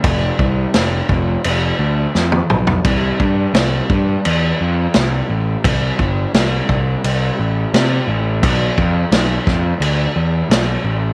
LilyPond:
<<
  \new Staff \with { instrumentName = "Picked electric bass" } { \clef bass \time 4/4 \key c \major \tempo 4 = 86 f,,8 c,8 f,,8 f,,8 f,,8 d,8 f,8 b,,8 | c,8 g,8 c,8 g,8 e,8 f,8 c,8 a,,8 | c,8 g,,8 c,8 c,8 c,8 a,,8 c8 a,,8 | b,,8 f,8 b,,8 f,8 d,8 e,8 b,,8 a,,8 | }
  \new DrumStaff \with { instrumentName = "Drums" } \drummode { \time 4/4 <cymc bd>8 bd8 <cymc sn>8 bd8 cymc4 sn16 tommh16 toml16 tomfh16 | <cymc bd>8 bd8 <cymc sn>8 bd8 cymc4 <cymc sn>4 | <cymc bd>8 bd8 <cymc sn>8 bd8 cymc4 <cymc sn>4 | <cymc bd>8 bd8 <cymc sn>8 <bd sn>8 cymc4 <cymc sn>4 | }
>>